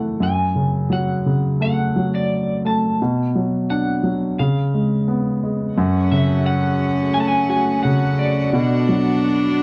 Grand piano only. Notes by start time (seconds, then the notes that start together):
Already playing: F#2 C#3 E3 A3 E4
0.20 F#2
0.55 C#3
0.90 F#3
1.26 C#3
1.61 A3
1.96 F#3
2.65 A3
3.02 B2
3.35 F#3
3.70 D4
4.03 F#3
4.40 C#3
4.74 G#3
5.08 B3
5.43 G#3
5.78 F#2
6.12 C#3
7.16 A3
7.50 F#4
7.85 C#3
8.53 B2
8.89 F#3